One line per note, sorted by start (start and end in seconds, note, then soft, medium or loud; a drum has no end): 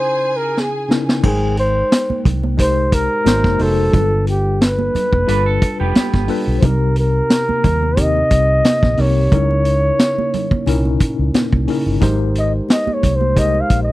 0.00 0.88 C#3 medium
0.00 0.89 C#4 medium
0.00 0.90 D#4 medium
0.00 0.91 E4 medium
0.00 1.20 G#4 medium
0.00 0.38 C5 loud
0.00 1.20 G#5 medium
0.37 0.62 A#4 medium
0.57 0.92 G#4 medium
0.57 snare medium
0.88 1.13 C#3 medium
0.88 1.13 C#4 medium
0.88 1.14 D#4 medium
0.88 1.14 E4 medium
0.88 1.14 A#4 medium
0.88 snare medium
1.09 snare loud
1.23 1.81 G#1 loud
1.23 2.15 G#3 medium
1.23 2.16 D#4 medium
1.23 1.56 G#4 loud
1.23 2.16 A#4 medium
1.23 2.17 C5 medium
1.23 2.16 G5 medium
1.23 kick loud
1.23 crash loud
1.23 muted conga soft
1.23 low conga medium
1.57 2.22 C5 loud
1.57 closed hi-hat medium
1.92 snare loud
1.92 closed hi-hat medium
2.10 muted fingered electric bass stroke soft
2.10 muted conga soft
2.10 high conga medium
2.25 3.07 C2 medium
2.25 kick medium
2.25 closed hi-hat medium
2.25 low conga medium
2.43 high conga medium
2.57 3.23 G#3 medium
2.57 3.24 D#4 medium
2.57 3.26 G4 medium
2.57 3.26 A#4 medium
2.57 3.26 C5 medium
2.57 2.96 C5 loud
2.57 kick medium
2.57 closed hi-hat loud
2.57 muted conga soft
2.92 3.64 A#4 loud
2.92 kick medium
2.92 closed hi-hat medium
3.25 3.44 G#1 loud
3.25 3.53 G#3 medium
3.25 3.53 D#4 medium
3.25 3.54 F#4 medium
3.25 3.54 A#4 medium
3.25 3.54 C5 loud
3.25 snare loud
3.25 closed hi-hat loud
3.25 muted conga soft
3.25 high conga medium
3.44 3.57 F#1 medium
3.44 kick medium
3.44 snare soft
3.44 high conga medium
3.59 3.89 F1 medium
3.59 3.83 G#3 medium
3.59 3.83 D#4 medium
3.59 3.84 F#4 medium
3.59 4.28 A4 loud
3.59 3.84 A#4 medium
3.59 3.84 C5 medium
3.59 open hi-hat medium
3.59 high conga soft
3.92 4.91 G1 loud
3.92 4.85 G3 medium
3.92 4.85 D4 medium
3.92 4.85 F4 medium
3.92 4.86 A4 medium
3.92 4.86 B4 medium
3.92 kick loud
3.92 closed hi-hat medium
3.92 muted conga soft
3.92 low conga medium
4.27 4.64 G4 medium
4.27 closed hi-hat medium
4.62 5.96 B4 loud
4.62 snare loud
4.62 closed hi-hat medium
4.79 muted conga soft
4.79 high conga medium
4.95 muted fingered electric bass stroke soft
4.95 closed hi-hat medium
4.95 low conga medium
5.13 5.26 F1 medium
5.13 kick medium
5.13 high conga medium
5.27 5.57 G1 loud
5.27 5.96 G3 medium
5.27 5.96 D4 medium
5.27 5.46 D4 medium
5.27 5.97 F4 medium
5.27 5.97 A4 medium
5.27 5.45 B4 medium
5.27 5.97 B4 medium
5.27 closed hi-hat loud
5.46 5.78 A4 medium
5.62 kick loud
5.62 closed hi-hat medium
5.80 5.94 F1 medium
5.80 6.59 B3 medium
5.80 6.59 G4 medium
5.95 snare loud
5.95 closed hi-hat medium
5.95 high conga medium
6.14 6.27 G1 medium
6.14 kick loud
6.14 snare soft
6.14 muted conga soft
6.14 high conga medium
6.27 6.52 G3 medium
6.27 6.52 D4 medium
6.27 6.53 F4 medium
6.27 6.53 A4 medium
6.27 6.53 B4 medium
6.27 open hi-hat medium
6.27 high conga medium
6.47 6.61 B1 medium
6.58 7.54 C3 medium
6.58 7.55 C4 medium
6.58 6.67 C5 medium
6.58 closed hi-hat medium
6.62 7.20 C2 loud
6.62 7.55 D#4 medium
6.62 7.55 G4 medium
6.62 7.56 A#4 medium
6.62 6.98 A#4 loud
6.62 kick loud
6.62 low conga medium
6.96 8.02 A#4 loud
6.96 closed hi-hat medium
7.30 snare loud
7.30 closed hi-hat loud
7.30 muted conga soft
7.49 muted fingered electric bass stroke soft
7.49 high conga medium
7.64 8.22 D#2 medium
7.64 kick medium
7.64 closed hi-hat medium
7.64 low conga medium
7.83 high conga medium
7.96 8.65 C3 medium
7.96 8.66 C4 medium
7.96 8.66 D#4 medium
7.96 8.66 G4 medium
7.96 8.66 A#4 medium
7.96 kick loud
7.96 closed hi-hat loud
7.96 muted conga soft
8.00 9.02 D#5 loud
8.17 muted conga soft
8.30 8.60 C2 loud
8.30 kick loud
8.30 closed hi-hat medium
8.64 snare loud
8.64 closed hi-hat loud
8.64 muted conga soft
8.64 high conga medium
8.83 8.96 A#1 medium
8.83 kick medium
8.83 snare soft
8.83 high conga medium
8.97 9.27 C2 medium
8.97 9.21 C3 medium
8.97 9.22 C4 medium
8.97 9.22 D#4 medium
8.97 9.23 G4 medium
8.97 9.23 A#4 medium
8.97 11.02 C#5 loud
8.97 open hi-hat medium
8.97 high conga soft
9.31 9.90 C#2 loud
9.31 10.24 C#3 medium
9.31 10.24 C#4 medium
9.31 10.24 D#4 medium
9.31 10.25 E4 medium
9.31 10.25 A#4 medium
9.31 kick loud
9.31 closed hi-hat medium
9.31 muted conga soft
9.31 low conga medium
9.51 muted conga soft
9.65 closed hi-hat medium
9.99 snare loud
9.99 closed hi-hat medium
10.18 high conga medium
10.34 closed hi-hat medium
10.34 low conga medium
10.51 kick medium
10.51 high conga medium
10.66 10.96 C2 loud
10.66 11.35 A#2 medium
10.66 11.35 C#4 medium
10.66 11.36 D#4 medium
10.66 11.36 E4 medium
10.66 11.37 A#4 loud
10.66 closed hi-hat loud
10.66 muted conga soft
10.85 muted conga soft
11.00 kick loud
11.00 closed hi-hat medium
11.19 11.32 C#2 medium
11.34 snare loud
11.34 closed hi-hat medium
11.34 muted conga soft
11.34 high conga medium
11.52 11.66 C2 medium
11.52 kick medium
11.52 high conga medium
11.67 11.91 C#3 medium
11.67 11.92 C#4 medium
11.67 11.92 D#4 medium
11.67 11.92 E4 medium
11.67 11.93 A#4 medium
11.67 open hi-hat medium
11.67 high conga soft
11.86 11.99 G1 medium
12.00 12.59 G#1 loud
12.00 12.93 G#3 medium
12.00 12.93 D#4 medium
12.00 12.94 G4 medium
12.00 12.94 A#4 medium
12.00 12.94 C5 medium
12.00 kick loud
12.00 closed hi-hat medium
12.00 muted conga soft
12.00 low conga medium
12.35 12.53 D#5 medium
12.35 closed hi-hat medium
12.69 12.95 D#5 loud
12.69 snare loud
12.69 closed hi-hat medium
12.69 muted conga soft
12.87 muted fingered electric bass stroke soft
12.87 muted conga soft
12.87 high conga medium
12.94 13.17 C#5 medium
13.03 13.61 C2 medium
13.03 kick medium
13.03 closed hi-hat medium
13.03 low conga medium
13.16 13.40 C5 medium
13.21 high conga medium
13.35 13.92 G#3 medium
13.35 13.92 D#4 medium
13.35 13.92 G4 medium
13.35 13.92 A#4 medium
13.35 13.92 C5 medium
13.35 13.63 D#5 loud
13.35 kick medium
13.35 closed hi-hat loud
13.54 muted conga soft
13.61 13.82 F5 medium
13.70 13.92 A#1 loud
13.70 kick loud
13.70 closed hi-hat medium
13.83 13.92 D#5 medium